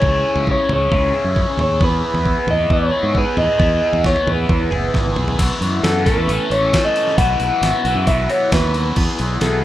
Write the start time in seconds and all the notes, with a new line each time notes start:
Already playing: C#4 E4 G#4 C#5
0.02 C#2, kick, floor tom
0.36 C#2, floor tom
0.47 kick
0.51 C#5
0.69 C#2 C#5, floor tom, mid tom
0.90 C#2 C#4 E4 G#4, kick, floor tom
1.13 E4 G#4
1.17 C#4
1.24 F#2
1.35 C#4 E4 G#4, kick
1.57 D#2 C#5, floor tom, mid tom
1.80 E2 B3 E4 G#4 B4, kick, floor tom
2.14 E2, floor tom
2.26 kick
2.47 E2 D#5, floor tom, mid tom
2.70 E2 C#5, kick, floor tom
2.91 B3 E4 G#4
3.03 G#2
3.13 B3 E4, kick
3.17 G#4 B4
3.37 E2 B3 E4 G#4 D#5, floor tom, mid tom
3.58 E2 B3 E4 G#4, kick, floor tom
3.93 E2, floor tom
4.04 C#5, kick, snare
4.16 floor tom
4.27 E2 B4, floor tom, mid tom
4.49 E2, kick, floor tom
4.71 F#1 E4 G#4, floor tom
4.75 B3
4.94 G#1 B3 E4 G#4, kick, snare
5.06 high tom
5.16 B1 B3 E4 G#4, mid tom
5.28 floor tom
5.38 B1 E3 F#3 B3 E4 F#4 B4, kick, open hi-hat, crash
5.60 F#2 B3 E4 F#4 B4, open hi-hat
5.83 F#2 E3 B3 E4 A4, snare, open hi-hat
5.87 F#4
6.05 A1 E3 A3 B3 C#4 E4 A4 B4, kick, snare, open hi-hat
6.17 E2
6.27 A1 E3 A3 C#4 E4 A4, open hi-hat
6.50 A1 E3 A3 C#4 E4 A4 C#5, open hi-hat
6.72 E3 A3 C#4 E4 A4, kick, snare, open hi-hat
6.85 D#5
6.94 A3 C#4 E4 A4, open hi-hat
7.07 snare
7.17 B1 E3 F#3 B3 E4 F#4 F#5, kick, open hi-hat
7.39 B1 B3 E4 F#4, open hi-hat
7.62 G#1 E3 B3 E4 F#4, snare, open hi-hat
7.85 B1 E3 B3 E4 F#4, open hi-hat
7.95 F#2
8.07 B1 E3 F#3 B3 E4 F#4 E5, kick, open hi-hat
8.29 E3 B3 E4 F#4 C#5, open hi-hat
8.52 D#2 E3 F#3 B3 E4 F#4 B4, kick, snare, open hi-hat
8.74 B3 E4 F#4, open hi-hat
8.96 E2 E3 B3 E4 F#4 G#4, kick, crash
9.18 B1 E4 G#4, open hi-hat
9.41 B1 B3 E4 G#4 A4, snare, open hi-hat